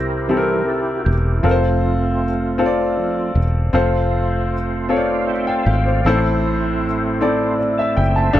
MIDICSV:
0, 0, Header, 1, 4, 480
1, 0, Start_track
1, 0, Key_signature, -1, "major"
1, 0, Tempo, 767263
1, 903, Time_signature, 6, 3, 24, 8
1, 5254, End_track
2, 0, Start_track
2, 0, Title_t, "Upright piano"
2, 0, Program_c, 0, 0
2, 0, Control_c, 0, 64, 127
2, 0, Note_on_c, 0, 48, 53
2, 0, Note_on_c, 0, 60, 72
2, 0, Note_on_c, 0, 64, 65
2, 0, Note_on_c, 0, 67, 58
2, 0, Note_on_c, 0, 72, 70
2, 163, Note_off_c, 0, 48, 0
2, 180, Note_off_c, 0, 60, 0
2, 180, Note_on_c, 0, 60, 58
2, 183, Note_off_c, 0, 64, 0
2, 183, Note_on_c, 0, 64, 52
2, 185, Note_off_c, 0, 67, 0
2, 185, Note_on_c, 0, 67, 52
2, 192, Note_on_c, 0, 69, 51
2, 228, Note_off_c, 0, 69, 0
2, 232, Note_on_c, 0, 70, 63
2, 680, Note_off_c, 0, 60, 0
2, 681, Note_off_c, 0, 64, 0
2, 682, Note_off_c, 0, 67, 0
2, 705, Note_off_c, 0, 70, 0
2, 895, Note_on_c, 0, 60, 67
2, 899, Note_on_c, 0, 65, 60
2, 902, Note_on_c, 0, 69, 59
2, 907, Note_on_c, 0, 70, 63
2, 911, Note_off_c, 0, 72, 0
2, 911, Control_c, 0, 64, 0
2, 945, Note_on_c, 0, 72, 82
2, 946, Note_off_c, 0, 70, 0
2, 1008, Control_c, 0, 64, 127
2, 1397, Note_off_c, 0, 60, 0
2, 1399, Note_off_c, 0, 65, 0
2, 1401, Note_off_c, 0, 69, 0
2, 1422, Note_off_c, 0, 72, 0
2, 1614, Note_on_c, 0, 60, 69
2, 1619, Note_on_c, 0, 65, 58
2, 1621, Note_on_c, 0, 69, 64
2, 1624, Note_on_c, 0, 72, 54
2, 1663, Note_on_c, 0, 74, 75
2, 1664, Note_off_c, 0, 72, 0
2, 2117, Note_off_c, 0, 60, 0
2, 2119, Note_off_c, 0, 65, 0
2, 2120, Note_off_c, 0, 69, 0
2, 2141, Note_off_c, 0, 74, 0
2, 2333, Note_on_c, 0, 60, 76
2, 2339, Note_on_c, 0, 65, 71
2, 2341, Note_on_c, 0, 69, 71
2, 2346, Note_on_c, 0, 72, 83
2, 2352, Control_c, 0, 64, 0
2, 2453, Control_c, 0, 64, 127
2, 2836, Note_off_c, 0, 60, 0
2, 2839, Note_off_c, 0, 65, 0
2, 2840, Note_off_c, 0, 69, 0
2, 2842, Note_off_c, 0, 72, 0
2, 3058, Note_on_c, 0, 60, 64
2, 3060, Note_on_c, 0, 65, 61
2, 3063, Note_on_c, 0, 69, 55
2, 3066, Note_on_c, 0, 73, 61
2, 3105, Note_off_c, 0, 73, 0
2, 3106, Note_on_c, 0, 74, 68
2, 3302, Note_on_c, 0, 77, 44
2, 3325, Note_off_c, 0, 74, 0
2, 3417, Note_off_c, 0, 77, 0
2, 3423, Note_on_c, 0, 79, 60
2, 3537, Note_off_c, 0, 79, 0
2, 3545, Note_on_c, 0, 77, 58
2, 3558, Note_off_c, 0, 60, 0
2, 3559, Note_off_c, 0, 65, 0
2, 3561, Note_off_c, 0, 69, 0
2, 3658, Note_off_c, 0, 77, 0
2, 3664, Note_on_c, 0, 72, 52
2, 3789, Note_off_c, 0, 72, 0
2, 3790, Control_c, 0, 64, 0
2, 3791, Note_on_c, 0, 60, 78
2, 3791, Note_on_c, 0, 64, 76
2, 3792, Note_on_c, 0, 69, 76
2, 3796, Note_on_c, 0, 45, 61
2, 3798, Note_on_c, 0, 72, 88
2, 3891, Control_c, 0, 64, 127
2, 4284, Note_off_c, 0, 60, 0
2, 4284, Note_off_c, 0, 64, 0
2, 4285, Note_off_c, 0, 69, 0
2, 4288, Note_off_c, 0, 72, 0
2, 4484, Note_off_c, 0, 45, 0
2, 4509, Note_on_c, 0, 60, 66
2, 4512, Note_on_c, 0, 64, 60
2, 4516, Note_on_c, 0, 69, 57
2, 4517, Note_on_c, 0, 74, 72
2, 4737, Note_off_c, 0, 74, 0
2, 4746, Note_on_c, 0, 74, 47
2, 4858, Note_off_c, 0, 74, 0
2, 4873, Note_on_c, 0, 76, 60
2, 4982, Note_off_c, 0, 76, 0
2, 4983, Note_on_c, 0, 79, 60
2, 5003, Note_off_c, 0, 60, 0
2, 5004, Note_off_c, 0, 64, 0
2, 5006, Note_off_c, 0, 69, 0
2, 5097, Note_off_c, 0, 79, 0
2, 5104, Note_on_c, 0, 81, 53
2, 5213, Note_on_c, 0, 62, 87
2, 5217, Note_on_c, 0, 65, 72
2, 5220, Note_on_c, 0, 43, 67
2, 5220, Note_on_c, 0, 67, 80
2, 5225, Note_on_c, 0, 69, 76
2, 5230, Control_c, 0, 64, 0
2, 5254, Note_off_c, 0, 43, 0
2, 5254, Note_off_c, 0, 62, 0
2, 5254, Note_off_c, 0, 65, 0
2, 5254, Note_off_c, 0, 67, 0
2, 5254, Note_off_c, 0, 69, 0
2, 5254, Note_off_c, 0, 81, 0
2, 5254, End_track
3, 0, Start_track
3, 0, Title_t, "Tonewheel organ"
3, 0, Program_c, 1, 16
3, 0, Note_on_c, 1, 64, 57
3, 0, Note_on_c, 1, 67, 58
3, 0, Note_on_c, 1, 70, 78
3, 173, Note_on_c, 1, 52, 42
3, 175, Note_on_c, 1, 55, 37
3, 183, Note_on_c, 1, 60, 45
3, 393, Note_off_c, 1, 52, 0
3, 395, Note_off_c, 1, 55, 0
3, 399, Note_off_c, 1, 60, 0
3, 416, Note_on_c, 1, 69, 71
3, 437, Note_off_c, 1, 70, 0
3, 506, Note_off_c, 1, 69, 0
3, 607, Note_on_c, 1, 66, 56
3, 636, Note_off_c, 1, 64, 0
3, 636, Note_off_c, 1, 67, 0
3, 657, Note_off_c, 1, 66, 0
3, 658, Note_on_c, 1, 67, 66
3, 849, Note_on_c, 1, 64, 51
3, 863, Note_off_c, 1, 67, 0
3, 891, Note_on_c, 1, 60, 52
3, 893, Note_on_c, 1, 53, 45
3, 894, Note_on_c, 1, 57, 46
3, 898, Note_off_c, 1, 64, 0
3, 900, Note_on_c, 1, 65, 60
3, 1217, Note_off_c, 1, 53, 0
3, 1857, Note_off_c, 1, 60, 0
3, 1858, Note_on_c, 1, 53, 36
3, 1859, Note_off_c, 1, 57, 0
3, 1865, Note_on_c, 1, 60, 43
3, 1866, Note_on_c, 1, 57, 33
3, 2077, Note_off_c, 1, 53, 0
3, 2077, Note_off_c, 1, 65, 0
3, 2080, Note_off_c, 1, 60, 0
3, 2081, Note_off_c, 1, 57, 0
3, 2340, Note_on_c, 1, 60, 53
3, 2342, Note_on_c, 1, 65, 54
3, 2345, Note_on_c, 1, 72, 69
3, 2346, Note_on_c, 1, 55, 46
3, 2378, Note_on_c, 1, 57, 59
3, 2385, Note_off_c, 1, 55, 0
3, 3069, Note_on_c, 1, 74, 42
3, 3069, Note_on_c, 1, 77, 52
3, 3294, Note_off_c, 1, 74, 0
3, 3294, Note_off_c, 1, 77, 0
3, 3294, Note_on_c, 1, 79, 59
3, 3301, Note_on_c, 1, 76, 45
3, 3412, Note_off_c, 1, 79, 0
3, 3416, Note_off_c, 1, 76, 0
3, 3423, Note_on_c, 1, 81, 54
3, 3424, Note_on_c, 1, 77, 44
3, 3537, Note_off_c, 1, 77, 0
3, 3537, Note_off_c, 1, 81, 0
3, 3537, Note_on_c, 1, 76, 44
3, 3542, Note_on_c, 1, 79, 57
3, 3651, Note_on_c, 1, 77, 48
3, 3653, Note_on_c, 1, 74, 42
3, 3654, Note_off_c, 1, 76, 0
3, 3657, Note_off_c, 1, 79, 0
3, 3756, Note_off_c, 1, 60, 0
3, 3757, Note_off_c, 1, 65, 0
3, 3759, Note_off_c, 1, 72, 0
3, 3775, Note_off_c, 1, 57, 0
3, 3781, Note_on_c, 1, 60, 55
3, 3782, Note_on_c, 1, 64, 59
3, 3782, Note_on_c, 1, 72, 68
3, 3783, Note_on_c, 1, 57, 68
3, 3884, Note_off_c, 1, 77, 0
3, 3886, Note_off_c, 1, 74, 0
3, 4723, Note_off_c, 1, 72, 0
3, 4865, Note_on_c, 1, 81, 59
3, 4977, Note_off_c, 1, 81, 0
3, 4987, Note_on_c, 1, 79, 56
3, 4994, Note_on_c, 1, 76, 49
3, 5098, Note_off_c, 1, 79, 0
3, 5102, Note_off_c, 1, 76, 0
3, 5113, Note_on_c, 1, 76, 58
3, 5117, Note_on_c, 1, 72, 44
3, 5195, Note_off_c, 1, 60, 0
3, 5196, Note_off_c, 1, 57, 0
3, 5196, Note_off_c, 1, 64, 0
3, 5222, Note_on_c, 1, 55, 64
3, 5222, Note_on_c, 1, 62, 58
3, 5223, Note_on_c, 1, 65, 62
3, 5224, Note_on_c, 1, 71, 78
3, 5254, Note_off_c, 1, 55, 0
3, 5254, Note_off_c, 1, 62, 0
3, 5254, Note_off_c, 1, 65, 0
3, 5254, Note_off_c, 1, 71, 0
3, 5254, Note_off_c, 1, 72, 0
3, 5254, Note_off_c, 1, 76, 0
3, 5254, End_track
4, 0, Start_track
4, 0, Title_t, "Fingered electric bass"
4, 0, Program_c, 2, 33
4, 0, Note_on_c, 2, 36, 87
4, 638, Note_off_c, 2, 36, 0
4, 664, Note_on_c, 2, 28, 82
4, 884, Note_off_c, 2, 28, 0
4, 898, Note_on_c, 2, 29, 82
4, 2076, Note_off_c, 2, 29, 0
4, 2098, Note_on_c, 2, 28, 72
4, 2321, Note_off_c, 2, 28, 0
4, 2337, Note_on_c, 2, 29, 82
4, 3515, Note_off_c, 2, 29, 0
4, 3543, Note_on_c, 2, 32, 77
4, 3763, Note_off_c, 2, 32, 0
4, 3784, Note_on_c, 2, 33, 81
4, 4957, Note_off_c, 2, 33, 0
4, 4988, Note_on_c, 2, 30, 75
4, 5206, Note_off_c, 2, 30, 0
4, 5222, Note_on_c, 2, 31, 85
4, 5254, Note_off_c, 2, 31, 0
4, 5254, End_track
0, 0, End_of_file